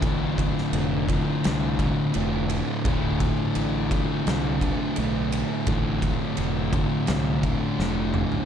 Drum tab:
RD |x-x-x-x-x-x-x-x-|x-x-x-x-x-x-x-x-|x-x-x-x-x-x-----|
SD |---o----o-------|--------o-------|--------o---o---|
T2 |----------------|----------------|--------------o-|
FT |----------------|----------------|---------------o|
BD |o-o---o---o-----|o-o---o---o-----|o-o---o---o-----|